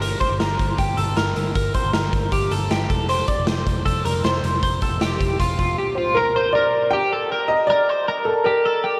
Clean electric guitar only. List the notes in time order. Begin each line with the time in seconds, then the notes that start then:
0.02 A#4
0.20 C5
0.40 A#4
0.79 G4
0.97 A4
1.17 A#4
1.56 A#4
1.75 C5
1.94 A#4
2.32 G4
2.52 A4
2.71 G4
2.90 A4
3.09 C5
3.28 D5
3.47 C5
3.86 A4
4.05 A#4
4.25 C5
4.63 C5
4.82 A4
5.02 G4
5.40 F4
5.59 F4
5.78 G4
5.98 F4
6.17 A#4
6.36 C5
6.55 A#4
6.93 G4
7.13 A4
7.32 A#4
7.70 A#4
7.89 C5
8.08 A#4
8.46 G4
8.65 A4
8.84 G4